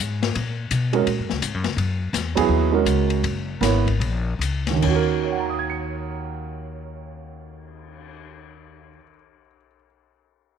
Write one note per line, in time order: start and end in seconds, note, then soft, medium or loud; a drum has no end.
0.00 0.33 G#2 medium
0.23 snare medium
0.23 ride soft
0.35 0.70 A#2 medium
0.35 ride medium
0.71 1.05 B2 medium
0.71 hi-hat pedal medium
0.71 ride medium
0.93 1.04 G#3 medium
0.93 1.05 C#4 medium
0.93 1.05 F#4 medium
0.93 1.05 A#4 medium
0.93 ride soft
1.07 1.21 A#2 medium
1.07 ride medium
1.19 1.30 F#2 medium
1.30 1.41 C#2 medium
1.30 snare soft
1.42 1.54 G#2 medium
1.42 hi-hat pedal medium
1.42 ride medium
1.54 1.65 F#2 medium
1.64 1.76 C#2 medium
1.64 snare soft
1.64 ride soft
1.77 2.11 F#2 medium
1.77 ride medium
2.13 2.48 E2 medium
2.13 snare soft
2.13 hi-hat pedal medium
2.13 ride medium
2.35 2.70 F#3 medium
2.35 2.70 B3 medium
2.35 2.71 E4 medium
2.35 2.71 G#4 medium
2.35 kick medium
2.35 ride medium
2.49 2.84 D#2 medium
2.72 3.20 G#3 medium
2.72 3.20 C#4 medium
2.72 3.21 F#4 medium
2.72 3.21 A#4 medium
2.85 3.21 C#2 medium
2.85 hi-hat pedal soft
2.85 ride medium
3.10 ride soft
3.23 3.60 F#1 medium
3.23 ride medium
3.61 3.98 G#1 medium
3.61 3.83 B3 medium
3.61 3.83 E4 medium
3.61 3.83 A#4 soft
3.61 3.84 C#5 medium
3.61 snare soft
3.61 hi-hat pedal soft
3.61 ride medium
3.87 kick soft
3.87 ride soft
4.00 4.38 A#1 medium
4.00 ride medium
4.39 4.79 C#2 medium
4.39 hi-hat pedal soft
4.39 ride medium
4.67 8.89 D#2 medium
4.67 snare soft
4.67 ride soft
4.76 8.95 D#3 medium
4.82 8.98 D#2 medium
4.82 9.02 C#4 medium
4.82 kick medium
4.82 crash medium
4.89 9.08 F#4 medium
4.95 9.15 A#4 medium
5.09 cymbal swell soft
5.24 9.40 C#5 soft
5.32 9.47 F#5 soft
5.40 9.55 A#5 soft
5.49 9.65 D#6 soft
5.59 9.74 G#6 soft
5.70 9.85 C#7 soft